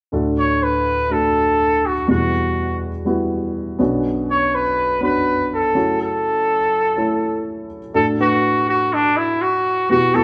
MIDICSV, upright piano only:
0, 0, Header, 1, 2, 480
1, 0, Start_track
1, 0, Key_signature, 2, "major"
1, 0, Tempo, 488202
1, 130, Time_signature, 4, 2, 24, 8
1, 10066, End_track
2, 0, Start_track
2, 0, Title_t, "Upright piano"
2, 0, Program_c, 0, 0
2, 118, Note_on_c, 0, 57, 60
2, 121, Note_on_c, 0, 62, 56
2, 125, Note_on_c, 0, 38, 58
2, 126, Note_on_c, 0, 45, 54
2, 128, Note_on_c, 0, 66, 55
2, 133, Note_on_c, 0, 69, 66
2, 330, Control_c, 0, 64, 127
2, 918, Note_off_c, 0, 57, 0
2, 919, Note_off_c, 0, 62, 0
2, 923, Note_off_c, 0, 66, 0
2, 925, Note_off_c, 0, 69, 0
2, 1078, Note_on_c, 0, 57, 51
2, 1083, Note_on_c, 0, 62, 46
2, 1093, Note_on_c, 0, 66, 47
2, 1094, Note_on_c, 0, 69, 62
2, 1878, Note_off_c, 0, 57, 0
2, 1880, Note_off_c, 0, 62, 0
2, 1885, Note_off_c, 0, 66, 0
2, 1886, Note_off_c, 0, 69, 0
2, 2009, Note_off_c, 0, 38, 0
2, 2010, Note_off_c, 0, 45, 0
2, 2039, Note_on_c, 0, 55, 54
2, 2047, Note_on_c, 0, 47, 44
2, 2049, Note_on_c, 0, 59, 50
2, 2050, Note_on_c, 0, 40, 48
2, 2051, Note_on_c, 0, 64, 48
2, 2060, Note_on_c, 0, 66, 58
2, 2064, Control_c, 0, 64, 0
2, 2254, Control_c, 0, 64, 127
2, 2839, Note_off_c, 0, 55, 0
2, 2844, Note_off_c, 0, 59, 0
2, 2845, Note_off_c, 0, 64, 0
2, 2849, Note_off_c, 0, 66, 0
2, 3002, Note_on_c, 0, 55, 64
2, 3009, Note_on_c, 0, 59, 58
2, 3014, Note_on_c, 0, 64, 60
2, 3019, Note_on_c, 0, 66, 70
2, 3691, Note_off_c, 0, 47, 0
2, 3692, Note_off_c, 0, 40, 0
2, 3708, Note_off_c, 0, 59, 0
2, 3722, Note_on_c, 0, 59, 63
2, 3727, Note_off_c, 0, 55, 0
2, 3727, Note_on_c, 0, 61, 58
2, 3728, Note_off_c, 0, 66, 0
2, 3731, Note_on_c, 0, 42, 53
2, 3732, Note_on_c, 0, 35, 53
2, 3733, Note_off_c, 0, 64, 0
2, 3733, Note_on_c, 0, 62, 63
2, 3742, Note_on_c, 0, 66, 74
2, 3745, Control_c, 0, 64, 0
2, 3942, Control_c, 0, 64, 127
2, 4521, Note_off_c, 0, 59, 0
2, 4523, Note_off_c, 0, 61, 0
2, 4526, Note_off_c, 0, 62, 0
2, 4530, Note_off_c, 0, 66, 0
2, 4921, Note_on_c, 0, 59, 56
2, 4927, Note_on_c, 0, 61, 50
2, 4932, Note_on_c, 0, 62, 50
2, 4941, Note_on_c, 0, 66, 63
2, 5613, Note_off_c, 0, 42, 0
2, 5614, Note_off_c, 0, 35, 0
2, 5634, Note_off_c, 0, 61, 0
2, 5644, Note_on_c, 0, 57, 57
2, 5646, Note_off_c, 0, 66, 0
2, 5647, Note_off_c, 0, 59, 0
2, 5649, Note_on_c, 0, 61, 54
2, 5651, Note_on_c, 0, 42, 49
2, 5652, Note_off_c, 0, 62, 0
2, 5653, Note_on_c, 0, 49, 49
2, 5656, Note_on_c, 0, 64, 51
2, 5660, Note_on_c, 0, 66, 65
2, 5663, Control_c, 0, 64, 0
2, 5858, Control_c, 0, 64, 127
2, 6442, Note_off_c, 0, 57, 0
2, 6444, Note_off_c, 0, 61, 0
2, 6447, Note_off_c, 0, 64, 0
2, 6450, Note_off_c, 0, 66, 0
2, 6848, Note_on_c, 0, 57, 65
2, 6856, Note_on_c, 0, 61, 61
2, 6862, Note_on_c, 0, 64, 60
2, 6866, Note_on_c, 0, 69, 77
2, 7533, Note_off_c, 0, 42, 0
2, 7534, Note_off_c, 0, 49, 0
2, 7644, Note_off_c, 0, 57, 0
2, 7648, Note_off_c, 0, 61, 0
2, 7651, Note_off_c, 0, 64, 0
2, 7652, Note_off_c, 0, 69, 0
2, 7802, Note_on_c, 0, 57, 59
2, 7811, Note_on_c, 0, 62, 59
2, 7813, Note_on_c, 0, 45, 52
2, 7814, Note_on_c, 0, 66, 52
2, 7823, Note_on_c, 0, 69, 65
2, 7828, Control_c, 0, 64, 0
2, 7990, Control_c, 0, 64, 127
2, 8009, Note_off_c, 0, 57, 0
2, 8013, Note_off_c, 0, 62, 0
2, 8015, Note_off_c, 0, 66, 0
2, 8020, Note_off_c, 0, 69, 0
2, 8051, Note_on_c, 0, 57, 61
2, 8056, Note_on_c, 0, 62, 55
2, 8060, Note_on_c, 0, 66, 62
2, 8067, Note_on_c, 0, 71, 71
2, 8494, Note_off_c, 0, 45, 0
2, 8845, Note_off_c, 0, 57, 0
2, 8847, Note_off_c, 0, 62, 0
2, 8849, Note_off_c, 0, 66, 0
2, 8853, Note_off_c, 0, 71, 0
2, 9729, Note_on_c, 0, 59, 56
2, 9735, Note_on_c, 0, 64, 53
2, 9739, Note_on_c, 0, 47, 52
2, 9740, Note_on_c, 0, 66, 53
2, 9746, Control_c, 0, 64, 0
2, 9746, Note_on_c, 0, 67, 64
2, 9907, Control_c, 0, 64, 127
2, 9932, Note_off_c, 0, 59, 0
2, 9935, Note_off_c, 0, 64, 0
2, 9938, Note_off_c, 0, 66, 0
2, 9941, Note_off_c, 0, 67, 0
2, 9971, Note_on_c, 0, 59, 68
2, 9976, Note_on_c, 0, 64, 61
2, 9983, Note_on_c, 0, 66, 59
2, 9987, Note_on_c, 0, 69, 70
2, 10066, Note_off_c, 0, 47, 0
2, 10066, Note_off_c, 0, 59, 0
2, 10066, Note_off_c, 0, 64, 0
2, 10066, Note_off_c, 0, 66, 0
2, 10066, Note_off_c, 0, 69, 0
2, 10066, End_track
0, 0, End_of_file